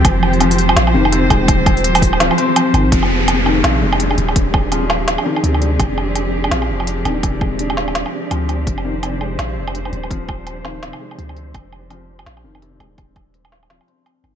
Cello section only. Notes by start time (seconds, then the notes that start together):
Already playing: F3 C4 G4
0.05 C5
2.92 F3 C4 G4 G#4
8.67 C5